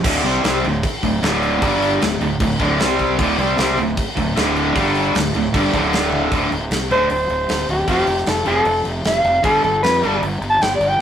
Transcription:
0.04 D1 D2 A2 D3, kick, crash
0.24 C2 C3 G3 C4, crash
0.43 C2 C3 G3 C4, snare, crash
0.64 D1 D2 A2, crash
0.83 kick, crash
1.03 D1 D2 A2, kick, crash
1.23 D1 D2 A2 D3, snare, crash
1.43 crash
1.62 G1 G2 D3 G3, kick, crash
1.82 crash
2.01 D1 D2 A2, snare, crash
2.21 D1 D2 A2, crash
2.40 D1 D2 A2, kick, crash
2.59 D1 D2 A2 D3, kick, crash
2.79 C2 C3 G3 C4, snare, crash
2.99 kick, crash
3.18 D1 D2 A2 D3, kick, crash
3.38 C2 C3 G3 C4, crash
3.58 C2 C3 G3 C4, snare, crash
3.77 D1 D2 A2, crash
3.97 kick, crash
4.16 D1 D2 A2, kick, crash
4.35 D1 D2 A2 D3, snare, crash
4.56 crash
4.75 G1 G2 D3 G3, kick, crash
4.95 crash
5.15 D1 D2 A2, snare, crash
5.35 D1 D2 A2, crash
5.54 G1 G2 D3 G3, kick, crash
5.73 D1 D2 A2 D3, kick, crash
5.93 snare, crash
6.13 high tom
6.32 D1 D2 A2 D3, kick, crash
6.52 D1, crash
6.71 C2, snare, crash
6.90 D1 D2 A2 D3 C5, crash
7.10 D1 C5, crash
7.29 D1, crash
7.49 D1, snare, crash
7.69 D1 G4, crash
7.87 F1 F2 C3 F3 G4, kick, crash
8.07 F1, crash
8.18 snare
8.26 F1 A4, snare, crash
8.46 F1 F2 C3 F3 A4, crash
8.65 F1, crash
8.85 F1, crash
9.04 F1 F5, snare, crash
9.24 F1, crash
9.43 G1 G2 D3 G3 A4, kick, crash
9.64 G1 A4, crash
9.83 F2 B4, snare, crash
10.02 G1 G2 D3 G3, crash
10.22 G1, crash
10.41 G1, crash
10.50 A5
10.61 G1 G5, snare, crash
10.75 D5
10.80 G1, crash
10.88 G5

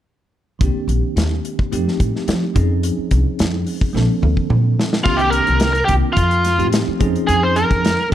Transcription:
0.59 C2 D#3 A#3 C4 D4, kick, closed hi-hat
0.63 G4
0.75 muted upright bass stroke
0.88 A#1, closed hi-hat
1.16 D#2, snare, closed hi-hat
1.45 closed hi-hat
1.59 kick
1.72 F2 F3 A3 C4 D#4 G4, closed hi-hat
1.88 snare
2.00 A2, kick, closed hi-hat
2.16 snare
2.28 F3, snare, closed hi-hat
2.54 F2 F3 C4 C#4 D#4 G#4, kick, closed hi-hat
2.83 closed hi-hat
2.98 muted upright bass stroke
3.11 C2, kick, closed hi-hat
3.39 F2, snare, closed hi-hat
3.67 open hi-hat
3.81 kick
3.93 A#1 F3 A#3 C4 D4 A4, snare
4.22 D2, mid tom
4.37 kick
4.50 A#2, mid tom
4.79 snare
4.93 snare
5.04 C2 D#3 A#3 C4 D4 F4 G4, kick, crash
5.17 G4, closed hi-hat
5.30 A#4, closed hi-hat
5.47 C2, closed hi-hat
5.60 snare, closed hi-hat
5.73 A#4, closed hi-hat
5.85 D#3 A#3 C4 D4 G4, kick, closed hi-hat
5.89 C2 F4
6.13 F2 F4, closed hi-hat
6.17 kick
6.31 closed hi-hat
6.45 snare, closed hi-hat
6.57 A2 F3 A3 C4 D#4 G4, closed hi-hat
6.73 snare, closed hi-hat
6.87 muted upright bass stroke
6.99 F2 F3 C4 C#4 D#4 G#4, kick, closed hi-hat
7.16 closed hi-hat
7.27 F2 G#4, closed hi-hat
7.43 C5
7.56 A#4, closed hi-hat
7.71 F2, kick, closed hi-hat
7.85 snare, closed hi-hat
8.10 F3 C4 C#4 D#4 F4

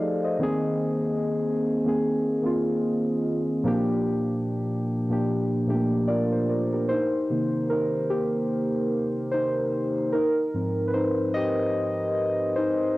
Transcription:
Already playing: F3 A3 D#4 G#4 A4 C5 D5 D#5 F5
0.24 C5 D#5
0.39 D#3 A#3 C4
0.43 G#4
1.84 D#3 A#3 C4 G#4
2.42 D#3 A#3 C4
2.46 F4
3.63 A#2 F3 A#3 D4 G4
5.09 A#2 F3 A#3 D4 G4
5.66 A#2 F3 A3 D4 G4
5.75 A#3
6.08 F4 G4 A#4 D5
6.32 C5
6.49 A#4 D5
6.73 G4 A#4
6.89 D#4 C5
7.30 C3 D#3 A#3
7.70 D#4 A#4
8.10 A#3 G4
9.32 D#4 C5
10.12 D#4 A#4
10.54 G#2 F3 C4
10.88 B4
10.94 D#4 C5
11.34 G4 D#5
12.56 D#4 C5

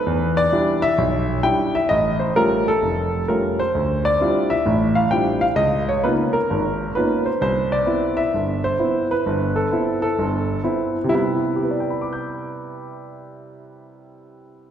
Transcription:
Already playing: B4
0.06 E2
0.37 D5
0.52 G3 D4 E4
0.82 E5
0.98 B1
1.43 G3 D4 E4 G5
1.75 E5
1.89 A1 D#5
2.20 C5
2.36 G3 A3 C#4 F4 A#4
2.68 A4
2.82 F1
3.28 G3 A3 C#4 F4 A#4
3.60 C5
3.75 D2
4.05 D5
4.20 G3 C4 D4 E4 F4
4.50 E5
4.66 A1 A2
4.95 F5
5.11 G3 C4 D4 E4 F4 G5
5.41 F5
5.56 C#2 D#5
5.89 C#5
6.04 A#3 B3 C#4 D#4 F4 B4
6.33 A#4
6.50 G#1
6.95 A#3 B3 C#4 D#4 F4 B4
7.26 C5
7.41 C2 C5
7.72 D5
7.86 B3 C4 E4
8.17 E5
8.34 G1
8.64 C5
8.79 B3 C4 E4
9.11 B4
9.26 G1
9.56 A4
9.72 B3 C4 E4
10.02 A4
10.19 G1
10.64 B3 C4 E4
11.04 C3
11.08 G3 B3 E4
11.15 E4
11.56 G4
11.63 B4
11.71 D5
11.80 G5
11.90 B5
12.01 D6
12.13 G6

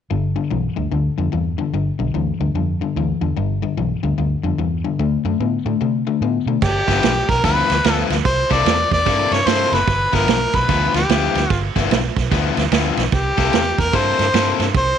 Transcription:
0.11 G1 G2 D3
0.36 G2 D3
0.51 B1 G2 E3
0.76 D2 G2 D3
0.92 D2 G2 D3
1.18 F2 G2 D3
1.32 E2 G2 E3
1.58 G2 D3
1.73 G1 G2 D3
1.99 B1 G2 D3
2.14 D2 G2 E3
2.40 D2 G2 D3
2.54 F2 G2 D3
2.81 G2 D3
2.96 D2 G2 E3
3.21 E2 G2 D3
3.37 G1 G2 D3
3.62 G2 D3
3.77 B1 G2 E3
4.03 D2 G2 D3
4.18 D2 G2 D3
4.43 F2 G2 D3
4.58 E2 G2 E3
4.84 G2 D3
4.99 D2 D3 A3
5.24 F#2 D3 A3
5.40 A2 D3 B3
5.65 A2 D3 A3
5.81 C3 D3 A3
6.07 D3 A3
6.21 A2 D3 B3
6.46 B2 D3 A3
6.62 G1 G4, kick, snare, crash
6.88 G1 G2 F3 B3 E4, kick, snare, ride
7.03 B1, snare, ride
7.29 B1 A#4, kick, snare, ride
7.43 D2 G2 F3 B3 E4 B4, kick, snare, ride
7.70 D2, snare, ride
7.84 D2 G2 F3 B3 E4, snare, ride
7.92 A4
8.10 D2, snare, ride
8.25 C2 C5, kick, snare, ride
8.50 C2 C3 A#3 E4 A4 D5, kick, snare, ride
8.65 E2, snare, ride
8.91 E2 D5, kick, snare, ride
9.06 G2 C3 A#3 E4 A4, kick, snare, ride
9.31 G2 C#5, snare, ride
9.46 G2 C3 A#3 E4 A4 C5, snare, ride
9.72 F#1 B4, snare, ride
9.87 G1, kick, snare, ride
10.13 G1 G2 F3 B3 E4 A#4, kick, snare, ride
10.27 B1, snare, ride
10.54 B1 B4, kick, snare, ride
10.68 D2 G2 F3 B3 E4, kick, snare, ride
10.94 D2 G4, snare, ride
11.09 D2 G2 F3 B3 E4, snare, ride
11.35 D2, snare, ride
11.50 G1 F4, kick, snare, ride
11.76 G1 G2 F3 B3 E4, kick, snare, ride
11.91 B1, snare, ride
12.16 B1, kick, snare, ride
12.31 D2 G2 F3 B3 E4, kick, snare, ride
12.57 D2, snare, ride
12.71 D2 G2 F3 B3 E4, snare, ride
12.97 B1, snare, ride
13.12 C2 G4, kick, snare, ride
13.37 C2 C3 A#3 E4 A4, kick, snare, ride
13.53 E2, snare, ride
13.78 E2 A#4, kick, snare, ride
13.93 G2 C3 A#3 E4 A4 C5, kick, snare, ride
14.19 G2, snare, ride
14.33 G2 C3 A#3 E4 A4, snare, ride
14.59 G2, snare, ride
14.74 C2 C5, kick, snare, ride

